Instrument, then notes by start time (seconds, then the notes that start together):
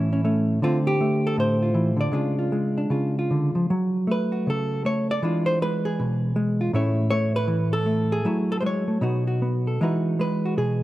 hollow-body jazz guitar
Already playing: A2 E3 A3 C#4 E4
0.13 C#4
0.24 A3 C#4
0.62 D3 A3 C4 F4
0.87 G4
1.01 A3
1.27 A4
1.37 A2 C5
1.62 F4
1.74 E3
1.96 D3
2.01 D5
2.12 C#3 G#3 D4 F4
2.39 F4
2.52 G#3
2.78 D4
2.90 C#3 F4
3.19 F4
3.31 D3
3.55 F3
3.70 F#3
4.07 A3
4.11 B4
4.32 F#4
4.47 C#3 A4
4.85 A3 C#5
5.11 D5
5.22 E3 G#3 D4 F4
5.46 C5
5.62 G#3 B4
5.85 G#4
6.00 B2
6.36 G#3
6.61 F4
6.73 A2 A3 C#4 E4 C#5
7.10 A3 C#5
7.36 B4
7.48 E3
7.73 A4
7.86 A3
8.12 G#4
8.25 F#3 A3 E4
8.52 A4
8.61 G#3 C5
8.66 C#5
8.88 A3
9.01 B2 B3 D#4 F#4
9.27 F#4
9.42 B3
9.67 A4
9.81 E3 G#3 D#4 F#4 B4
10.19 G#3 B4
10.45 F#4
10.57 B2 G#4